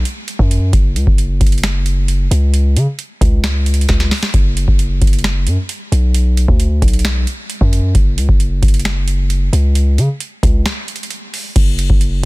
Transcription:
0.05 closed hi-hat
0.28 closed hi-hat
0.39 F#2, kick
0.51 closed hi-hat
0.73 F#1, kick, closed hi-hat
0.96 C#2, closed hi-hat
1.07 F#1, kick
1.18 closed hi-hat
1.41 F#1, kick, closed hi-hat
1.47 closed hi-hat
1.52 closed hi-hat
1.58 closed hi-hat
1.63 finger snap, snare, closed hi-hat
1.86 closed hi-hat
2.08 closed hi-hat
2.31 C#2, closed hi-hat
2.54 closed hi-hat
2.76 C#3, closed hi-hat
2.99 closed hi-hat
3.21 C#2, kick, closed hi-hat
3.44 finger snap, snare, closed hi-hat
3.66 closed hi-hat
3.74 closed hi-hat
3.81 closed hi-hat
3.89 C#2, kick, snare, closed hi-hat
4.00 snare
4.11 snare, open hi-hat
4.23 snare
4.34 F#1, kick, closed hi-hat
4.57 closed hi-hat
4.68 F#1, kick
4.79 closed hi-hat
5.02 F#1, kick, closed hi-hat
5.07 closed hi-hat
5.13 closed hi-hat
5.19 closed hi-hat
5.24 finger snap, snare, closed hi-hat
5.47 F#2, closed hi-hat
5.69 closed hi-hat
5.92 B1, closed hi-hat
6.14 closed hi-hat
6.37 closed hi-hat
6.48 D2, kick
6.60 closed hi-hat
6.82 B1, kick, closed hi-hat
6.88 closed hi-hat
6.93 closed hi-hat
6.99 closed hi-hat
7.05 finger snap, snare, closed hi-hat
7.27 closed hi-hat
7.50 closed hi-hat
7.61 F#2, kick
7.73 closed hi-hat
7.95 F#1, kick, closed hi-hat
8.17 C#2, closed hi-hat
8.29 F#1, kick
8.40 closed hi-hat
8.63 F#1, kick, closed hi-hat
8.68 closed hi-hat
8.74 closed hi-hat
8.79 closed hi-hat
8.85 finger snap, snare, closed hi-hat
9.08 closed hi-hat
9.30 closed hi-hat
9.53 C#2, closed hi-hat
9.75 closed hi-hat
9.98 C#3, closed hi-hat
10.20 closed hi-hat
10.43 C#2, kick, closed hi-hat
10.66 finger snap, snare, closed hi-hat
10.88 closed hi-hat
10.96 closed hi-hat
11.03 closed hi-hat
11.11 closed hi-hat
11.34 open hi-hat
11.56 F#1, kick, closed hi-hat, crash
11.79 closed hi-hat
11.90 F#1, kick
12.01 closed hi-hat

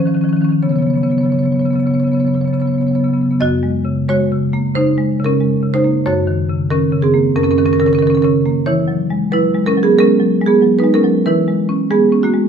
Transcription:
Already playing: D#3 C5
0.00 F3 C#4
0.05 D#3 F3 C#4
0.14 D#3 F3 C#4
0.21 D#3 F3 C#4
0.29 D#3 F3 C#4
0.37 C#4
0.41 D#3 F3 C#4
0.49 D#3 F3 C#4
0.63 C#3 F#3 B3 C#5
0.69 C#3 F#3 B3 C#5
0.76 F#3 B3 C#5
0.82 C#3 C#5
0.86 F#3 B3
0.90 C#3 F#3 C#5
0.95 B3 C#5
1.02 C#3 F#3 B3 C#5
1.09 F#3 B3 C#5
1.14 C#3
1.18 F#3 B3 C#5
1.23 C#3 F#3 C#5
1.30 F#3 B3 C#5
1.34 C#3
1.38 B3 C#5
1.43 C#3 F#3 B3 C#5
1.51 F#3 B3 C#5
1.56 C#3 F#3 C#5
1.61 C#3 B3
1.66 F#3 C#5
1.71 F#3 B3 C#5
1.75 C#3
1.80 F#3 B3 C#5
1.86 C#3 B3 C#5
1.91 C#3 F#3 C#5
1.95 F#3 B3
2.00 B3 C#5
2.04 C#3 F#3 C#5
2.12 C#3 B3 C#5
2.17 F#3 B3 C#5
2.25 C#3 F#3 B3 C#5
2.34 C#3 F#3 B3 C#5
2.41 C#3 F#3 C#5
2.45 B3 C#5
2.50 C#3 F#3 B3
2.54 F#3 C#5
2.60 C#3 B3 C#5
2.65 F#3 B3 C#5
2.72 C#3 F#3 C#5
2.78 B3 C#5
2.82 C#3 F#3
2.87 B3 C#5
2.91 C#3 F#3
2.95 B3 C#5
3.00 C#3 F#3
3.04 B3
3.09 F#3
3.13 C#3 F#3 B3
3.22 C#3 F#3 B3
3.31 C#3 B3
3.40 F#2 F#4 D#5
3.63 G#3
3.85 C#3
4.09 G#3 F#4 C#5
4.32 C#3
4.53 A#3
4.75 C#3 D#4 C5
4.98 G#3
5.20 C#3
5.25 C#4 A#4
5.40 G#3
5.63 C#3
5.74 D#4 C5
5.84 A#3
6.06 F#2 F#4 C#5
6.27 D#3
6.49 C#3
6.71 D#3 C#4 A#4
6.92 C#3
7.02 C4 G#4
7.14 A#3
7.36 F#2 C#4 A#4
7.44 C#4 A#4
7.51 C#4 A#4
7.58 D#3 C#4 A#4
7.66 C#4 A#4
7.73 C#4 A#4
7.80 C#3 C#4 A#4
7.86 C#4 A#4
7.93 C#4 A#4
7.99 D#3 C#4 A#4
8.07 C#4 A#4
8.15 C#4 A#4
8.22 C#3 C#4 A#4
8.46 A#3
8.66 E3 E4 C#5
8.88 F#3
9.10 G#3
9.32 F#3 E4 B4
9.55 G#3
9.66 C#4 A#4
9.77 F#3
9.83 B3 G#4
9.99 G#3 C#4 A#4
10.20 F#3
10.41 G#3
10.46 B3 G#4
10.62 F#3
10.79 D#4 B4
10.84 G#3
10.94 C#4 A#4
11.04 F#3
11.26 E3 E4 B4
11.48 G#3
11.69 C#4
11.90 G#3 B3 G#4
12.12 C#4
12.23 A#3 F#4
12.34 G#3

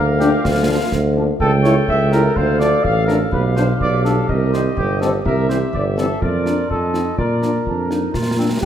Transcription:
Already playing: D2 A#4 F5
0.19 F3 A#3 D4 G4, snare
0.44 D2 F4, concert bass drum, snare
0.69 F3 A#3 D4
0.92 D2, concert bass drum, snare
1.17 F3 A#3 D4
1.40 C#2 A4 G5, concert bass drum
1.64 G3 A3 E4 C#5, snare
1.88 C#2 E5, concert bass drum
2.12 G3 A3 E4 A#4, snare
2.36 D2 C5 F5, concert bass drum
2.60 F3 A3 D4 D5, snare
2.83 A1 F5, concert bass drum
3.07 F3 A3 D4 A#4, snare
3.32 B1 G4 B4, concert bass drum
3.56 F3 G3 D4 C5, snare
3.80 B1 D5, concert bass drum
4.04 F3 G3 D4 A4, snare
4.28 C2 A#4 D#5, concert bass drum
4.52 D#3 G3 C4 C5, snare
4.76 G1 G4, concert bass drum
5.00 D#3 G3 C4 A4, snare
5.25 C2 G4 A#4 E5, concert bass drum
5.50 E3 G3 C4 C5, snare
5.73 G1 D5, concert bass drum
5.97 E3 G3 C4 A4, snare
6.21 F2 F4 A#4 D5, concert bass drum
6.45 F3 A#3 D4, snare
6.70 F2 A4 D#5, concert bass drum
6.93 F3 C4 D#4, snare
7.17 A#2 F4 A#4 D5, concert bass drum
7.42 F3 A#3 D4, snare
7.66 F2 D4, concert bass drum
7.89 F3 A#3 D4 D#4, snare
8.14 A#2 F4, concert bass drum, snare
8.38 F3 A#3 C4 D4
8.62 G3 D4 G4

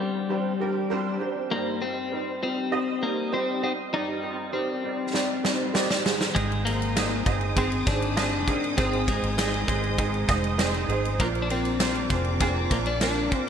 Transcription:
Already playing: G2 D3 G3 D5
0.00 G3 C4 D4 G4 C5
0.29 G3 C4 D4 G4 C5
0.60 G3 C4 D4 G4 A#4
0.90 G3 C4 D4 G4 C5
1.21 G3 C4 D4 G4 C5
1.50 G2 G3 A#3 C4 D#4 G4 C5
1.81 G3 C4 D#4 G4 C5
2.12 G3 C4 D#4 G4 C5
2.42 G3 C4 D#4 G4 C5
2.71 G3 C4 D#4 G4 D#5
3.01 G3 A#3 C4 D#4 G4 C5
3.31 G3 C4 D#4 G4 C5
3.62 G3 C4 D#4 G4 D#5
3.93 G2 G3 C4 D#4 G4 D5
4.22 G3 C4 D#4 G4 C5
4.53 G3 C4 D#4 G4 A#4
4.83 G3 C4 D#4 G4 D5
5.13 G3 C4 D#4 G4 D5, snare
5.43 G3 C4 D#4 G4 C5, snare
5.74 G3 C4 D#4 G4 D5, snare
5.91 snare
6.04 G#2 D#3 G#3 C4 D#4 G#4 C5, snare
6.21 snare
6.35 G#1 G#2 D#3 G#3 C4 D#4 G#4 C5 G#5 D#6, kick, ride
6.52 ride
6.65 G#3 A#3 C4 D#4 G#4 C5, ride
6.82 ride
6.95 G#3 C4 D#4 G#4 D#5, snare, clap, ride
7.25 G1 G#3 C4 D#4 G#4 D#5, kick, ride
7.41 ride
7.55 G#2 D#3 G#3 C4 D#4 G#4 C5, kick, ride
7.72 ride
7.86 G#1 G#3 C4 D4 D#4 G#4 C5, kick, snare, ride
7.90 G#3
8.02 ride
8.16 G#3 C4 D4 D#4 G#4 D#5, snare, clap, ride
8.20 G#4
8.47 G#2 D#3 G#3 C4 D#4 G#4 A#4, kick, ride
8.64 ride
8.77 G#1 G#2 D#3 G#3 C4 D#4 G#4 C5, kick, ride
8.93 ride
9.07 G#3 C4 D#4 G#4 C5, kick, ride
9.23 G#1, ride
9.37 G#3 C4 D#4 G#4 D#5, snare, clap, ride
9.54 ride
9.67 G#1 G#3 C4 D#4 G#4 C5, kick, ride
9.71 G#3
9.84 ride
9.98 G#2 D#3 G#3 C4 D#4 G#4 C5, kick, ride
10.14 ride
10.28 F1 G#3 C4 D#4 G#4 D#5, kick, snare, ride
10.44 ride
10.58 G#3 C4 D#4 G#4 C5, snare, clap, ride
10.62 G#4
10.74 ride
10.88 G#1 G#3 C4 D#4 G#4 C5, ride
11.05 ride
11.20 A#1 A#2 F3 A#3 C4 D4 F4 A#4 C5 A#5 D6, kick, ride
11.35 ride
11.42 D4
11.49 A#3 C4 D4 F4 A#4 C5, ride
11.54 D4
11.65 ride
11.78 A#3 C4 D4 F4 C5, snare, clap, ride
11.83 C5
11.95 ride
12.10 F1 A#3 C4 D4 F4 G#4 C5, kick, ride
12.24 ride
12.40 A#3 C4 D4 F4 G#4 C5, kick, ride
12.70 A#1 A#3 C4 D4 F4 C5, kick, ride
12.74 D4
12.86 D4, ride
13.00 A#3 C4 D4 F4 A#4, snare, clap, ride
13.04 C5
13.31 A#3 C4 D4 F4 C5, kick, ride

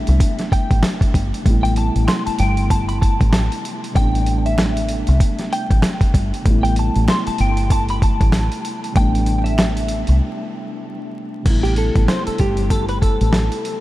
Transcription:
Already playing: C3 G3 A3 B3 D4 E5
0.07 C2, closed hi-hat
0.20 kick, closed hi-hat
0.39 snare, closed hi-hat
0.52 G5, kick, closed hi-hat
0.71 A1, kick, closed hi-hat
0.83 finger snap, snare, closed hi-hat
1.01 kick, closed hi-hat
1.14 G1, kick, closed hi-hat
1.34 closed hi-hat
1.42 A1 C3 G3, kick, closed hi-hat
1.46 A3 B3
1.50 E4
1.63 G5, closed hi-hat
1.76 A5, closed hi-hat
1.96 A1, closed hi-hat
2.08 C6, finger snap, snare, closed hi-hat
2.26 A5, muted fingered electric bass stroke, closed hi-hat
2.39 G1 G5, closed hi-hat
2.57 closed hi-hat
2.70 A5, kick, closed hi-hat
2.88 B5, closed hi-hat
3.01 A5, kick, closed hi-hat
3.21 A1, kick, closed hi-hat
3.33 finger snap, snare, closed hi-hat
3.52 closed hi-hat
3.65 closed hi-hat
3.84 closed hi-hat
3.92 C3 G3, kick
3.96 A1 A3 B3 G5, closed hi-hat
4.00 D4
4.15 closed hi-hat
4.26 closed hi-hat
4.46 E5, closed hi-hat
4.58 finger snap, snare, closed hi-hat
4.77 closed hi-hat
4.88 closed hi-hat
5.07 C2, closed hi-hat
5.20 kick, closed hi-hat
5.39 snare, closed hi-hat
5.53 G5, closed hi-hat
5.71 A1, kick, closed hi-hat
5.82 finger snap, snare, closed hi-hat
6.01 kick, closed hi-hat
6.14 G1, kick, closed hi-hat
6.34 closed hi-hat
6.42 A1 C3 G3 A3, kick, closed hi-hat
6.48 B3 E4
6.63 G5, closed hi-hat
6.76 A5, closed hi-hat
6.96 A1, closed hi-hat
7.08 C6, finger snap, snare, closed hi-hat
7.27 A5, muted fingered electric bass stroke, closed hi-hat
7.38 G1 G5, closed hi-hat
7.57 closed hi-hat
7.70 A5, kick, closed hi-hat
7.89 B5, closed hi-hat
8.02 A5, kick, closed hi-hat
8.21 A1, kick, closed hi-hat
8.32 finger snap, snare, closed hi-hat
8.52 closed hi-hat
8.65 closed hi-hat
8.84 closed hi-hat
8.92 C3 G3, kick, closed hi-hat
8.96 A1 A3 B3 G5
9.00 D4
9.15 closed hi-hat
9.26 closed hi-hat
9.44 E5, closed hi-hat
9.58 finger snap, snare, closed hi-hat
9.77 closed hi-hat
9.88 closed hi-hat
10.07 C2, closed hi-hat
11.42 A1 C3 G3, kick, closed hi-hat, crash
11.46 A3 B3 E4
11.63 G4, closed hi-hat
11.76 A4, closed hi-hat
11.95 A1, kick, closed hi-hat
12.08 C5, snare, closed hi-hat
12.27 A4, muted fingered electric bass stroke, closed hi-hat
12.38 G1 G4, kick, closed hi-hat
12.57 closed hi-hat
12.70 A4, kick, closed hi-hat
12.89 B4, closed hi-hat
13.02 A4, kick, closed hi-hat
13.21 A1, closed hi-hat
13.33 snare, closed hi-hat
13.52 closed hi-hat
13.65 closed hi-hat

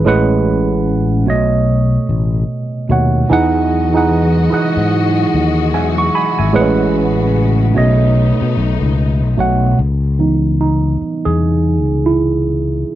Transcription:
0.05 A1 A2 G#3 C#4 B4 F#5
1.26 B1 B2 A3 C#5 D#5
2.09 A1
2.89 D#2 B2 A3 C#5 F#5
3.28 E2 E3 F#3 G#3 D#4 F#4 G#4 D#5
3.33 F#5
3.93 E3 D#4 G#4 F#5
4.50 D#4 E4 G#4 F#5, muted fretless electric bass stroke
4.77 G#2
5.34 D#2
5.74 E2 E5 G#5
5.98 C#6
6.15 G#5 B5
6.39 G#1 E5 G#5
6.53 A1 A2 C#3 G#3 B3 C4 B4 F#5
6.61 C#4
7.74 B1 B2 A3 B3 D#4 C#5 D#5
8.42 B2
8.57 B1
8.82 C#2
9.23 B1
9.37 B1 B2 A3 C#5 F#5
9.79 C#2
10.19 E3 B3 D#4
10.61 D#4
11.02 muted fretless electric bass stroke
11.25 E2 G#4
11.83 C#2
12.06 E4

